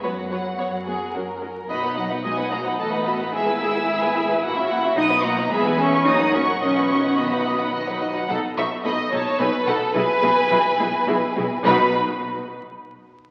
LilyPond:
<<
  \new Staff \with { instrumentName = "Violin section" } { \time 3/4 \key b \major \tempo 4 = 108 fis''2 r4 | b''8 fis''8 gis''8 ais''8 a''8 b''8 | e'''2~ e'''8 r8 | dis'''8 ais''8 b''8 cis'''8 dis'''8 cis'''8 |
cis'''4 b''4. r8 | fis''8 cis'''8 b''8 a''8 gis''8 fis''8 | gis''2. | b''8 r2 r8 | }
  \new Staff \with { instrumentName = "Violin section" } { \time 3/4 \key b \major <b' cis''>8 <b' cis''>8 cis''8 gis'8 ais'4 | dis''16 <b' fis''>16 dis''16 <b' fis''>16 dis''16 <b' fis''>16 dis''16 <b' fis''>16 <a' dis''>16 <b' fis''>16 <a' dis''>16 <b' fis''>16 | <gis' e''>16 <b' gis''>16 <gis' e''>16 <b' gis''>16 <gis' e''>16 <b' gis''>16 <gis' e''>16 <b' gis''>16 <e' fis''>16 <fis' e''>16 <e' fis''>16 <fis' e''>16 | <dis'' fis''>16 <b' dis''>16 <dis'' fis''>16 <b' dis''>16 <gis' e''>16 <b' gis''>16 <gis' e''>16 <b' gis''>16 cis''16 <ais' fis''>16 cis''16 <ais' fis''>16 |
dis''16 <b' fis''>16 dis''16 <b' fis''>16 dis''16 <b' fis''>16 dis''16 <b' fis''>16 dis''16 <b' fis''>16 dis''16 <b' fis''>16 | a'8 e''8 dis''8 cis''8 b'8 a'8 | b'2. | b'8 r2 r8 | }
  \new Staff \with { instrumentName = "Viola section" } { \time 3/4 \key b \major <b fis'>8 <b fis'>8 <b fis'>8 <b fis'>8 <cis' fis'>8 <cis' fis'>8 | <dis' fis'>16 <b dis'>16 <dis' fis'>16 <b dis'>16 <dis' fis'>16 <b dis'>16 <dis' fis'>16 <b dis'>16 <a fis'>16 <b dis'>16 <a fis'>16 <b dis'>16 | <gis gis'>16 <b e'>16 <gis gis'>16 <b e'>16 <gis gis'>16 <b e'>16 <gis gis'>16 <b e'>16 <ais fis'>16 <cis' e'>16 <ais fis'>16 <cis' e'>16 | <dis' fis'>16 <b dis'>16 <dis' fis'>16 <b dis'>16 <gis gis'>16 <b e'>16 <gis gis'>16 <b e'>16 <ais fis'>16 <fis cis'>16 <ais fis'>16 <fis cis'>16 |
<dis fis'>16 <fis dis'>16 <dis fis'>16 <fis dis'>16 <dis fis'>16 <fis dis'>16 <dis fis'>16 <fis dis'>16 <dis fis'>16 <fis dis'>16 <dis fis'>16 <fis dis'>16 | <dis' a'>8 <dis' a'>8 <dis' a'>8 <dis' a'>8 <dis' a'>8 <dis' a'>8 | <e' gis'>8 <e' gis'>8 <e' gis'>8 <e' gis'>8 <e' gis'>8 <e' gis'>8 | <dis' fis'>8 r2 r8 | }
  \new Staff \with { instrumentName = "Cello section" } { \clef bass \time 3/4 \key b \major fis2 r4 | b8 fis8 gis8 ais8 a8 b8 | e'2~ e'8 r8 | dis'8 ais8 b8 cis'8 dis'8 cis'8 |
cis'4 b4. r8 | b,8 b,8 b,8 b,8 b,8 b,8 | b,8 b,8 b,8 b,8 b,8 b,8 | b,8 r2 r8 | }
  \new Staff \with { instrumentName = "Double bass section" } { \clef bass \time 3/4 \key b \major fis,4 fis,4 fis,4 | b,,2 a,,4 | gis,,2 ais,,4 | b,,4 e,4 fis,4 |
b,,2~ b,,8 r8 | b,,8 b,,8 b,,8 b,,8 b,,8 b,,8 | b,,8 b,,8 b,,8 b,,8 b,,8 b,,8 | b,,8 r2 r8 | }
>>